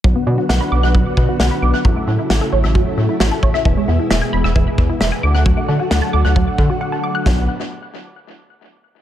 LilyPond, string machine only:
\new Staff \with { instrumentName = "String machine" } { \clef bass \time 4/4 \key b \dorian \tempo 4 = 133 << { fis'1 | e'1~ | e'2.~ e'8 fis'8~ | fis'1 |
<d fis b fis'>8 r2. r8 | } \\ { <d fis b>1 | <cis fis a>1 | <b, e gis>2.~ <b, e gis>8 <d fis a>8~ | <d fis a>1 |
r1 | } >> }